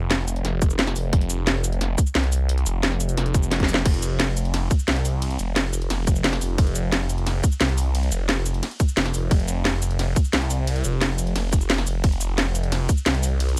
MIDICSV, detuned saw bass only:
0, 0, Header, 1, 2, 480
1, 0, Start_track
1, 0, Tempo, 340909
1, 1590, Time_signature, 4, 2, 24, 8
1, 19147, End_track
2, 0, Start_track
2, 0, Title_t, "Detuned saw bass"
2, 0, Program_c, 0, 39
2, 0, Note_on_c, 0, 29, 97
2, 610, Note_off_c, 0, 29, 0
2, 629, Note_on_c, 0, 29, 108
2, 1330, Note_off_c, 0, 29, 0
2, 1350, Note_on_c, 0, 29, 90
2, 1570, Note_off_c, 0, 29, 0
2, 1589, Note_on_c, 0, 29, 101
2, 2770, Note_off_c, 0, 29, 0
2, 3029, Note_on_c, 0, 36, 98
2, 3730, Note_off_c, 0, 36, 0
2, 3749, Note_on_c, 0, 29, 101
2, 4450, Note_off_c, 0, 29, 0
2, 4469, Note_on_c, 0, 29, 108
2, 5410, Note_off_c, 0, 29, 0
2, 5429, Note_on_c, 0, 29, 93
2, 6610, Note_off_c, 0, 29, 0
2, 6870, Note_on_c, 0, 36, 101
2, 7571, Note_off_c, 0, 36, 0
2, 7591, Note_on_c, 0, 29, 91
2, 8291, Note_off_c, 0, 29, 0
2, 8310, Note_on_c, 0, 29, 106
2, 9011, Note_off_c, 0, 29, 0
2, 9030, Note_on_c, 0, 29, 97
2, 9251, Note_off_c, 0, 29, 0
2, 9269, Note_on_c, 0, 29, 97
2, 10450, Note_off_c, 0, 29, 0
2, 10710, Note_on_c, 0, 36, 103
2, 11411, Note_off_c, 0, 36, 0
2, 11429, Note_on_c, 0, 29, 95
2, 12130, Note_off_c, 0, 29, 0
2, 12629, Note_on_c, 0, 29, 98
2, 12850, Note_off_c, 0, 29, 0
2, 12870, Note_on_c, 0, 29, 92
2, 13090, Note_off_c, 0, 29, 0
2, 13109, Note_on_c, 0, 29, 98
2, 14290, Note_off_c, 0, 29, 0
2, 14550, Note_on_c, 0, 36, 98
2, 15251, Note_off_c, 0, 36, 0
2, 15270, Note_on_c, 0, 29, 97
2, 15971, Note_off_c, 0, 29, 0
2, 15990, Note_on_c, 0, 29, 108
2, 16690, Note_off_c, 0, 29, 0
2, 16709, Note_on_c, 0, 29, 96
2, 16930, Note_off_c, 0, 29, 0
2, 16949, Note_on_c, 0, 29, 98
2, 18130, Note_off_c, 0, 29, 0
2, 18391, Note_on_c, 0, 36, 99
2, 19091, Note_off_c, 0, 36, 0
2, 19147, End_track
0, 0, End_of_file